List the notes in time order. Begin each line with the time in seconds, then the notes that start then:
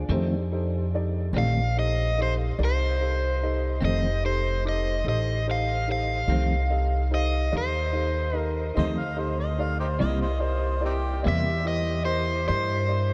0.09 F2 D#3 A3 C4 D#4 G4 A4 C5
0.52 D#4 G4 A4 C5
0.94 D#4 G4 A4 D5
1.33 A#1 D#3 A3 C4 D#4 G4 D5
1.37 F2 A4 F5
1.77 D#4 G4 A4 C5 D#5
2.18 D#4 G4 A4 D#5
2.22 C5
2.59 C2 D#4 G4 A4 D5
2.65 C5
3.00 D#4 G4 A4 C5
3.43 D#4 G4 A4 D#5
3.81 F1 F2 D#3 A3 C4
3.85 D#4 G4 A4 C5 D#5
4.25 D#4 G4 A4 C5
4.65 D#4 G4 A4 D#5 D6
5.05 A1 D#4 G4 A4 C5
5.09 D#5
5.47 D#4 G4 A4 C5
5.51 F5
5.87 D#4 G4 A4 C5
5.92 F5
6.27 C2 C4 D#4 G4 A4 C5
6.31 F2 D#3 A3
6.70 D#4 G4 A4 D#5
7.11 D#4 G4 A4 C5 D#5
7.52 D#2 D#4 G4 A4 D5
7.58 C5
7.93 D#4 G4 A4 D#5
8.33 D#4 G4 A4 D#5
8.38 A#4
8.74 D2 A3 C4 D#4 G4 A4 C5 D#5
8.79 F2 D#3
8.99 F5
9.16 D#4 G4 A4 C5 D#5
9.40 D#5
9.58 D#4 G4 A4 D5 F5
9.80 D#4 G4 C5
9.99 C2 C3 G3 A#3 E4 G4 A#4 D5 D#5
10.21 C5 D#5
10.39 E4 G4 A#4 C5 D5
10.80 E4 G4 A#4 D5
10.85 C4 D#4 G4
11.23 E2 G3 A#3 E4 G4 A#4 D5
11.27 C3 E5
11.63 E4 G4 A#4 C5
11.68 D#5
12.04 E4 G4 A#4 C5
12.47 G2 E4 G4 A#4 C5 D5
12.88 E4 G4 A#4 D5